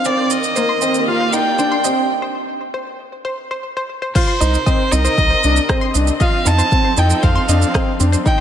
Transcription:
Already playing: string section C4
0.05 string section D#3, grand piano C4, violin D5, shaker
0.18 synth arpeggio sound C5
0.30 analog synth bass D#2, violin D#5, shaker
0.43 shaker
0.56 grand piano A#3, string section A#3, synth arpeggio sound C5, shaker
0.69 synth arpeggio sound C6
0.82 analog synth bass D#2, grand piano C4, synth arpeggio sound D#5, shaker
0.95 string section G4 D5, shaker
1.08 grand piano F4, violin F5
1.20 synth arpeggio sound C5
1.33 analog synth bass D#2, grand piano D#4, violin G5, shaker
1.59 grand piano D4, synth arpeggio sound C5, shaker
1.72 synth arpeggio sound C6
1.84 grand piano C4, synth arpeggio sound D#5, shaker
2.22 synth arpeggio sound C5
2.74 synth arpeggio sound C5
3.25 synth arpeggio sound C5
3.51 synth arpeggio sound C5
3.77 synth arpeggio sound C5
4.02 synth arpeggio sound C5
4.15 string section C3, grand piano F4, violin C5, synth arpeggio sound C5, kick, crash, shaker
4.28 synth arpeggio sound C6
4.37 grand piano D#4, string section A#4, synth arpeggio sound D#5
4.41 analog synth bass C2, shaker
4.54 shaker
4.66 grand piano C4, synth arpeggio sound D#5, kick, shaker
4.81 string section C4
4.92 analog synth bass C2, synth arpeggio sound C4, grand piano D#4, violin D#5, shaker
4.98 string section D#5
5.05 synth arpeggio sound C5, shaker
5.18 analog synth bass C2, kick, shaker
5.30 synth arpeggio sound C5
5.44 analog synth bass C2, grand piano D4, shaker
5.56 shaker
5.69 grand piano C4, synth arpeggio sound C5, kick, cross-stick, shaker
5.81 synth arpeggio sound C6
5.94 analog synth bass C2, grand piano D4, synth arpeggio sound D#5, shaker
6.07 shaker
6.20 string section F3, grand piano F4, synth arpeggio sound D#5, violin F5, kick, shaker
6.45 analog synth bass F2, synth arpeggio sound C4, grand piano D#4, violin A5, shaker
6.58 synth arpeggio sound C5, shaker
6.65 string section A4
6.72 grand piano C4, kick, shaker
6.84 synth arpeggio sound C5
6.97 analog synth bass F2, grand piano D#4, violin G5, shaker
7.10 shaker
7.23 analog synth bass F2, synth arpeggio sound C5, violin F5, kick, shaker
7.35 synth arpeggio sound C6
7.49 analog synth bass F2, grand piano D4, synth arpeggio sound D#5, shaker
7.62 shaker
7.74 grand piano C4, synth arpeggio sound D#5, kick, cross-stick, shaker
8.00 analog synth bass F2, synth arpeggio sound C4, grand piano D4, shaker
8.12 synth arpeggio sound C5, shaker
8.26 string section D#3, grand piano D#4, violin G5, kick, shaker

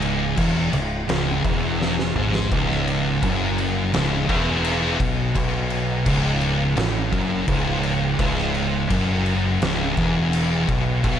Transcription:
Already playing: fingered electric bass C#1, distorted electric guitar C#2
0.02 crash
0.37 fingered electric bass E1, distorted electric guitar E2, kick, crash
0.72 fingered electric bass C#1, distorted electric guitar C#2, crash
1.09 fingered electric bass C#1, distorted electric guitar C#2, snare, crash
1.44 fingered electric bass E1, distorted electric guitar E2, kick, crash
1.82 snare
1.99 snare
2.15 fingered electric bass G#1, distorted electric guitar G#2, mid tom
2.35 snare
2.51 fingered electric bass C#1, distorted electric guitar C#2, kick, crash
2.71 snare
2.88 crash
3.23 fingered electric bass F#1, distorted electric guitar F#2, kick, crash
3.58 crash
3.94 fingered electric bass C#1, distorted electric guitar C#2, snare, crash
4.29 fingered electric bass E1, distorted electric guitar E2, kick, crash
4.65 crash
5.00 fingered electric bass B1, distorted electric guitar B2, kick, crash
5.35 fingered electric bass B1, distorted electric guitar B2, kick, crash
5.70 crash
6.05 fingered electric bass C#1, distorted electric guitar C#2, kick, crash
6.41 crash
6.77 fingered electric bass A1, distorted electric guitar A2, snare, crash
7.12 fingered electric bass F#1, distorted electric guitar F#2, kick, crash
7.48 fingered electric bass C#1, distorted electric guitar C#2, kick, crash
7.83 crash
8.19 fingered electric bass C#1, distorted electric guitar C#2, kick, crash
8.38 snare
8.54 crash
8.90 fingered electric bass F#1, distorted electric guitar F#2, kick, crash
9.26 crash
9.62 fingered electric bass C#1, distorted electric guitar C#2, snare, crash
9.97 fingered electric bass E1, distorted electric guitar E2, kick, crash
10.33 crash
10.68 fingered electric bass B1, distorted electric guitar B2, kick, crash
11.04 fingered electric bass B1, distorted electric guitar B2, kick, crash

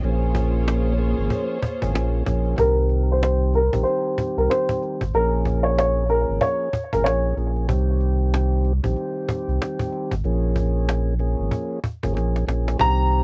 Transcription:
0.03 sub bass A#1, tonewheel organ F3 A#3 C#4 G#4, string section A#3 F4 G#4 C5 C#5, cajon slap
0.35 cajon bass
0.68 cajon slap
0.98 tonewheel organ F3 A#3 C#4 G#4, cajon slap
1.18 sub bass G#1
1.30 cajon bass
1.63 cajon bass
1.82 sub bass G#1, tonewheel organ F3 A#3 C#4 G#4, cajon bass
1.93 sub bass A#1, tonewheel organ F3 A#3 C#4 G#4, cajon slap
2.25 sub bass A#1, tonewheel organ F3 A#3 C#4 G#4, cajon bass, cajon slap
2.45 cajon slap
2.57 sub bass C2, tonewheel organ D#3 G3 C4 G4, upright piano A#4, cajon bass
2.89 cajon slap
3.12 upright piano C5
3.23 upright piano C5, cajon slap
3.53 upright piano A#4, cajon slap
3.72 sub bass A#1, tonewheel organ D#3 G3 C4 G4, cajon bass
3.83 upright piano C5, cajon slap
4.18 cajon bass
4.37 sub bass C2, upright piano A#4, cajon slap
4.50 upright piano C5, cajon slap
4.69 cajon bass
4.82 cajon slap
5.01 sub bass G#1, cajon bass
5.14 sub bass A#1, tonewheel organ F3 A#3 C#4 G#4, upright piano A#4, cajon slap
5.45 cajon bass
5.63 upright piano C#5
5.78 upright piano C#5, cajon slap
6.09 tonewheel organ F3 A#3 C#4 G#4, upright piano A#4, cajon slap
6.29 sub bass G#1
6.41 upright piano C#5, cajon bass
6.73 cajon bass
6.92 sub bass G#1, tonewheel organ F3 A#3 C#4 G#4, upright piano A#4, cajon bass
7.04 sub bass A#1, tonewheel organ F3 A#3 C#4 G#4, upright piano C#5, cajon slap
7.36 sub bass A#1, tonewheel organ F3 A#3 C#4 G#4, cajon slap
7.56 cajon slap
7.68 sub bass C2, tonewheel organ D#3 G3 C4 G4, cajon bass
8.01 cajon slap
8.34 cajon slap
8.65 cajon slap
8.83 sub bass A#1, tonewheel organ D#3 G3 C4 G4, cajon bass
8.96 cajon slap
9.29 cajon bass
9.48 sub bass C2, cajon slap
9.62 cajon slap
9.80 cajon bass
9.93 cajon slap
10.12 sub bass G#1, cajon bass
10.24 sub bass A#1, tonewheel organ F3 A#3 C#4 G#4, cajon slap
10.56 cajon bass
10.89 cajon slap
11.19 tonewheel organ F3 A#3 C#4 G#4, cajon slap
11.40 sub bass G#1
11.51 cajon bass
11.84 cajon bass
12.03 sub bass G#1, tonewheel organ F3 A#3 C#4 G#4, cajon bass
12.14 sub bass A#1, tonewheel organ F3 A#3 C#4 G#4, cajon slap
12.36 cajon slap
12.47 sub bass A#1, tonewheel organ F3 A#3 C#4 G#4, cajon slap
12.68 cajon slap
12.78 sub bass C2, tonewheel organ D#3 G3 C4 G4, upright piano A#5, cajon bass
13.11 cajon slap

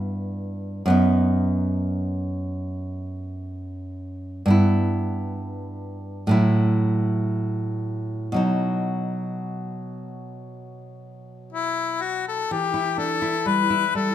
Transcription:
Already playing: nylon-string guitar G2 B3 E4
0.86 nylon-string guitar F#2 B3
0.90 nylon-string guitar D#4
4.46 nylon-string guitar G2 B3
4.50 nylon-string guitar E4
6.27 nylon-string guitar A2 F#3 E4
8.32 nylon-string guitar B2 F#3
8.36 nylon-string guitar D#4
11.52 harmonica E4
12.02 harmonica F#4
12.28 harmonica A4
12.51 nylon-string guitar E3, harmonica G4
12.74 nylon-string guitar E4
12.98 nylon-string guitar D4, harmonica A4
13.22 nylon-string guitar E4
13.46 nylon-string guitar G3, harmonica B4
13.70 nylon-string guitar E4
13.95 nylon-string guitar G3, harmonica A4

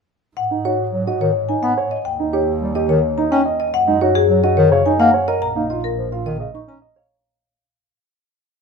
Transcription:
0.37 double bass G#2, marimba F#5
0.51 grand piano D#4
0.65 grand piano F#4, marimba C#5
0.93 bass clarinet F#3
1.07 grand piano F#4, marimba D#5
1.21 bass clarinet D#3, marimba C#5
1.49 grand piano D#4, marimba G#5
1.63 bass clarinet B3, marimba F#5
1.78 grand piano C#5
1.91 marimba D#5
2.05 double bass D#2, marimba G5
2.20 grand piano D#4
2.33 grand piano G4, marimba C#5
2.61 bass clarinet G3
2.75 grand piano G4, marimba D#5
2.89 bass clarinet D#3, marimba C#5
3.18 grand piano D#4, marimba A#5
3.31 bass clarinet C#4, marimba G5
3.46 grand piano D#5
3.60 marimba D#5
3.73 double bass F#2, marimba F#5
3.87 bass clarinet G#3, grand piano D#4
4.01 grand piano F#4, marimba C#5
4.15 marimba G#4
4.29 bass clarinet F#3
4.44 grand piano F#4, marimba D#5
4.57 bass clarinet D#3, marimba C#5
4.71 bass clarinet C#3, grand piano C#5
4.86 grand piano D#4, marimba G#5
4.99 bass clarinet A#3, marimba F#5
5.14 grand piano C#5
5.28 grand piano A#4, marimba D#5
5.42 double bass A#1, marimba A#5
5.56 bass clarinet A#3, grand piano D#4
5.70 grand piano F4, marimba D#5
5.84 marimba A#4
5.98 bass clarinet F3
6.12 grand piano F4, marimba F5
6.26 bass clarinet D#3, marimba D#5
6.39 bass clarinet C#3, grand piano D#5
6.54 grand piano D#4, marimba C#6
6.68 bass clarinet C#4, marimba A#5
6.82 grand piano D#5
6.96 grand piano C#5, marimba F5

